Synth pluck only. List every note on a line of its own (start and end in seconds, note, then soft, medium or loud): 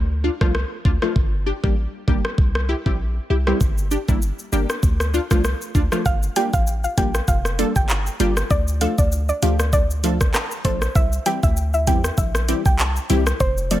6.06 6.17 F5 loud
6.36 6.48 G5 loud
6.53 6.62 F5 medium
6.84 6.93 F5 medium
6.98 7.09 G5 medium
7.28 7.40 F5 medium
7.76 7.85 G5 medium
8.51 8.62 D5 loud
8.81 8.93 F5 medium
8.98 9.07 D5 medium
9.29 9.38 D5 medium
9.42 9.54 F5 medium
9.73 10.18 D5 loud
10.65 10.76 C5 medium
10.95 11.07 E5 loud
11.26 11.38 G5 medium
11.43 11.52 E5 medium
11.74 11.83 E5 medium
11.87 11.99 G5 medium
12.18 12.29 E5 medium
12.66 12.75 G5 medium
13.40 13.52 C5 loud
13.71 13.80 D5 medium